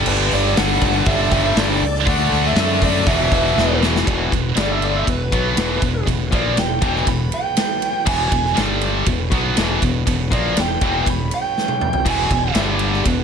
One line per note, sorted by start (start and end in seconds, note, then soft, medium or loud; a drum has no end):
0.00 1.04 G2 loud
0.00 1.06 D3 loud
0.00 1.07 G3 loud
0.00 2.05 G3 medium
0.00 3.03 D4 medium
0.00 2.04 A4 medium
0.06 0.30 G1 medium
0.06 0.31 B4 loud
0.06 crash loud
0.31 0.56 G1 medium
0.31 0.59 D5 loud
0.31 snare soft
0.31 open hi-hat medium
0.56 0.81 G1 medium
0.56 1.31 G2 medium
0.56 1.32 D3 medium
0.56 1.09 F#5 loud
0.56 snare loud
0.56 open hi-hat medium
0.61 1.30 G3 medium
0.81 1.05 G1 medium
0.81 kick medium
0.81 open hi-hat medium
1.05 1.30 G1 medium
1.05 1.30 G2 medium
1.05 1.31 D3 loud
1.05 1.31 G3 medium
1.05 1.57 E5 loud
1.05 kick loud
1.05 open hi-hat medium
1.31 1.55 G1 loud
1.31 1.82 D3 medium
1.31 1.81 G3 medium
1.31 kick medium
1.31 open hi-hat medium
1.35 1.82 G2 medium
1.56 1.80 G1 loud
1.56 2.09 D5 loud
1.56 snare loud
1.56 open hi-hat medium
1.81 2.05 C#2 medium
1.81 open hi-hat medium
1.95 snare soft
2.05 2.30 D2 loud
2.05 3.05 D3 loud
2.05 3.06 A3 loud
2.05 3.06 D4 loud
2.05 3.06 A4 medium
2.05 3.07 E5 medium
2.05 2.47 F#5 loud
2.05 kick loud
2.05 open hi-hat medium
2.32 2.55 D2 medium
2.32 snare soft
2.32 open hi-hat medium
2.46 2.84 E5 medium
2.56 3.02 F#2 medium
2.56 snare loud
2.56 open hi-hat medium
2.82 3.07 D3 medium
2.82 3.06 A3 medium
2.82 3.06 D4 loud
2.82 3.06 D5 medium
2.82 kick medium
2.82 open hi-hat medium
3.06 3.30 E1 loud
3.06 4.05 E2 loud
3.06 4.06 B2 loud
3.06 4.06 E3 medium
3.06 4.06 E3 loud
3.06 4.06 B3 medium
3.06 4.06 F#4 medium
3.06 3.78 E5 loud
3.06 kick loud
3.06 open hi-hat medium
3.31 3.55 E1 medium
3.31 kick loud
3.31 open hi-hat medium
3.57 4.03 E1 loud
3.57 snare medium
3.81 4.07 E2 medium
3.81 4.06 B2 medium
3.81 4.05 E3 medium
3.81 snare loud
3.96 snare loud
4.07 4.30 E1 medium
4.07 4.31 E2 medium
4.07 4.31 B2 medium
4.07 4.32 E3 loud
4.07 4.57 E3 medium
4.07 4.57 B3 medium
4.07 4.56 F#4 medium
4.07 kick loud
4.07 ride medium
4.32 4.55 E1 medium
4.32 4.52 E2 medium
4.32 4.52 B2 medium
4.32 kick medium
4.32 ride medium
4.55 5.03 G1 medium
4.55 5.06 G2 medium
4.55 5.06 D3 medium
4.55 5.06 G3 medium
4.55 5.06 G3 loud
4.55 5.06 D4 medium
4.55 5.05 A4 medium
4.55 4.72 D5 medium
4.55 snare loud
4.55 ride medium
4.72 4.84 E5 medium
4.82 4.96 D5 medium
4.82 ride medium
4.96 5.07 E5 medium
5.07 5.30 E1 medium
5.07 5.27 E2 medium
5.07 5.27 B2 medium
5.07 8.54 E3 medium
5.07 8.54 F#3 medium
5.07 8.54 B3 medium
5.07 6.05 B4 medium
5.07 kick medium
5.07 ride medium
5.32 5.56 B1 medium
5.32 5.56 B2 medium
5.32 5.56 F#3 medium
5.32 5.57 B3 loud
5.32 kick loud
5.32 ride medium
5.56 5.80 E1 loud
5.56 5.80 E2 medium
5.56 5.80 B2 medium
5.56 5.82 E3 medium
5.56 snare loud
5.56 ride loud
5.81 6.05 E1 medium
5.81 6.01 E2 medium
5.81 6.02 B2 medium
5.81 kick medium
5.81 ride medium
6.05 6.30 E1 medium
6.05 6.26 E2 medium
6.05 6.27 B2 medium
6.05 kick medium
6.05 ride loud
6.31 6.55 A#1 loud
6.31 6.56 A#2 medium
6.31 6.56 F3 medium
6.31 6.57 A#3 loud
6.31 kick loud
6.31 ride medium
6.35 6.58 D5 medium
6.56 6.80 E1 medium
6.56 6.77 E2 medium
6.56 6.77 B2 medium
6.56 7.07 G5 medium
6.56 snare loud
6.56 ride loud
6.81 7.05 E1 medium
6.81 7.04 E2 medium
6.81 7.05 B2 loud
6.81 7.07 E3 loud
6.81 kick loud
6.81 ride medium
6.96 snare soft
7.06 7.30 E1 medium
7.06 7.26 E2 medium
7.06 7.27 B2 medium
7.06 7.32 B5 medium
7.06 kick medium
7.06 ride loud
7.32 8.06 G5 loud
7.32 ride medium
7.57 snare loud
7.57 ride loud
7.82 ride medium
8.05 8.30 E1 medium
8.05 8.29 E2 medium
8.05 8.29 B2 medium
8.05 8.31 E3 loud
8.05 8.56 G#5 loud
8.05 kick loud
8.05 crash medium
8.30 8.55 E1 medium
8.30 8.51 E2 medium
8.30 8.51 B2 medium
8.30 kick loud
8.30 ride medium
8.46 snare soft
8.54 9.04 G1 medium
8.54 9.05 G2 medium
8.54 9.06 D3 medium
8.54 9.06 G3 loud
8.54 9.07 G3 medium
8.54 9.07 A4 medium
8.54 snare loud
8.54 ride loud
8.58 9.07 G2 medium
8.58 9.07 D4 medium
8.81 ride medium
9.06 9.30 E1 medium
9.06 9.27 E2 medium
9.06 9.27 B2 medium
9.06 12.53 E3 medium
9.06 12.52 F#3 medium
9.06 11.05 B3 medium
9.06 kick medium
9.06 ride medium
9.30 9.55 B1 loud
9.30 9.55 B2 medium
9.30 9.56 F#3 medium
9.30 9.56 B3 loud
9.30 kick loud
9.30 ride medium
9.56 9.80 E1 loud
9.56 9.80 E2 medium
9.56 9.81 B2 loud
9.56 9.82 E3 medium
9.56 snare loud
9.56 ride loud
9.82 10.05 E1 medium
9.82 10.02 E2 medium
9.82 10.02 B2 medium
9.82 kick medium
9.82 ride medium
10.06 10.30 E1 medium
10.06 10.26 E2 medium
10.06 10.27 B2 medium
10.06 kick medium
10.06 ride loud
10.30 10.55 A#1 medium
10.30 10.55 A#2 medium
10.30 10.56 F3 medium
10.30 10.56 A#3 loud
10.30 10.57 D5 loud
10.30 kick loud
10.30 ride medium
10.55 10.80 E1 medium
10.55 10.76 E2 medium
10.55 10.76 B2 medium
10.55 snare loud
10.55 ride loud
10.60 11.07 G5 loud
10.81 11.05 E1 medium
10.81 11.04 E2 medium
10.81 11.06 B2 loud
10.81 11.06 E3 loud
10.81 kick loud
10.81 ride medium
11.06 11.30 E1 medium
11.06 11.26 E2 medium
11.06 11.27 B2 medium
11.06 12.54 C#4 medium
11.06 kick medium
11.06 ride loud
11.10 11.33 B5 medium
11.31 12.06 G5 medium
11.31 ride medium
11.58 snare medium
11.68 high tom medium
11.81 mid tom medium
11.93 floor tom medium
12.05 12.29 E1 medium
12.05 12.28 E2 medium
12.05 12.28 B2 medium
12.05 12.30 E3 loud
12.05 kick loud
12.05 crash loud
12.09 12.56 G#5 medium
12.29 12.54 E1 medium
12.29 12.50 E2 medium
12.29 12.50 B2 medium
12.29 kick medium
12.29 ride medium
12.53 13.02 G1 medium
12.53 13.03 G2 medium
12.53 13.03 D3 medium
12.53 13.04 G3 loud
12.53 13.06 A4 medium
12.53 snare loud
12.53 ride loud
12.57 13.06 G3 medium
12.57 13.07 D4 medium
12.79 ride medium
12.93 snare soft
13.03 13.24 E1 medium
13.03 13.24 E2 medium
13.03 13.24 B2 medium
13.03 kick medium
13.03 ride medium
13.07 13.24 E3 medium
13.07 13.24 B3 medium
13.07 13.24 F#4 medium